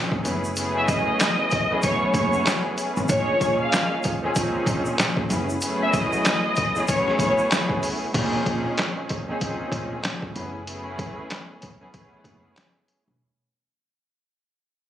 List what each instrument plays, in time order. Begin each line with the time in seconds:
Already playing: string section A#2 F3 C4 C#4 D#4 G#4
0.12 kick
0.23 upright bass F#1, string section F#2 A3 B3 C#4 E4 G#4, closed hi-hat, shaker
0.44 shaker
0.55 string section F#2 A3 B3 C#4 E4 G#4, closed hi-hat, shaker
0.77 violin section E5 E6
0.87 violin section D#5 D#6, kick, closed hi-hat, shaker
1.20 snare, clap, closed hi-hat, shaker
1.51 kick, closed hi-hat, shaker
1.69 string section F#2 A3 B3 C#4 E4 G#4
1.81 string section F#2 A3 B3 C#4 E4 G#4, violin section C#5 C#6, kick, closed hi-hat, shaker
2.14 upright bass F#1, violin section C#5 C#6, kick, closed hi-hat, shaker
2.33 shaker
2.47 snare, clap, closed hi-hat, shaker
2.78 closed hi-hat, shaker
2.97 upright bass G#1, shaker
3.08 upright bass A#1, string section A#2 F3 A#3 C#4 D#4 G#4, violin section C#5 C#6, kick, closed hi-hat, shaker
3.41 kick, closed hi-hat, shaker
3.60 violin section F5 F6
3.72 snare, clap, closed hi-hat, shaker
4.03 kick, closed hi-hat, shaker
4.22 string section A#2 F3 C4 C#4 D#4 G#4
4.34 string section A#2 F3 C4 C#4 D#4 G#4, kick, closed hi-hat, shaker
4.66 upright bass A#1, kick, closed hi-hat, shaker
4.86 shaker
4.99 snare, clap, closed hi-hat, shaker
5.17 kick
5.28 upright bass F#1, string section F#2 A3 B3 C#4 E4 G#4, closed hi-hat, shaker
5.49 shaker
5.60 string section F#2 A3 B3 C#4 E4 G#4, closed hi-hat, shaker
5.82 violin section E5 E6
5.93 violin section D#5 D#6, kick, closed hi-hat, shaker
6.13 shaker
6.25 snare, clap, closed hi-hat, shaker
6.56 kick, closed hi-hat, shaker
6.74 string section F#2 A3 B3 C#4 E4 G#4, shaker
6.86 string section F#2 A3 B3 C#4 E4 G#4, violin section C#5 C#6, kick, closed hi-hat, shaker
7.08 snare
7.19 violin section C#5 C#6, kick, closed hi-hat, shaker
7.38 shaker
7.52 snare, clap, closed hi-hat, shaker
7.70 kick
7.83 open hi-hat, shaker
8.13 upright bass A#1, string section A#2 F3 C4 C#4 D#4 G#4, kick, closed hi-hat, crash
8.46 kick, closed hi-hat
8.78 snare, clap, closed hi-hat
9.09 kick, closed hi-hat
9.27 string section A#2 F3 C4 C#4 D#4 G#4
9.40 string section A#2 F3 C4 C#4 D#4 G#4, kick, closed hi-hat
9.72 upright bass A#1, kick, closed hi-hat
10.05 snare, clap, closed hi-hat
10.22 kick
10.33 upright bass F#1, string section F#2 A3 B3 C#4 E4 G#4, closed hi-hat
10.65 string section F#2 A3 B3 C#4 E4 G#4, closed hi-hat
10.99 kick, closed hi-hat
11.30 snare, clap, closed hi-hat
11.62 kick, closed hi-hat
11.79 string section F#2 A3 B3 C#4 E4 G#4
11.92 string section F#2 A3 B3 C#4 E4 G#4, kick, closed hi-hat
12.24 upright bass F#1, kick, closed hi-hat
12.57 snare, clap, closed hi-hat
12.88 closed hi-hat
13.08 upright bass E1